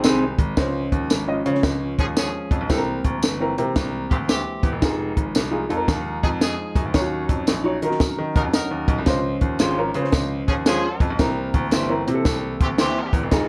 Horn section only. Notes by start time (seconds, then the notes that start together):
1.99 F3 C#4 G#4
2.16 F3 C#4 G#4
4.10 E3 C4 G4
4.28 E3 C4 G4
6.23 F3 D#4 G#4
6.41 F3 D#4 G#4
8.36 F#3 D#4 A#4
8.54 F#3 D#4 A#4
10.48 F3 C#4 G#4
10.67 F3 C#4 G#4
12.61 E3 C4 G4
12.79 E3 C4 G4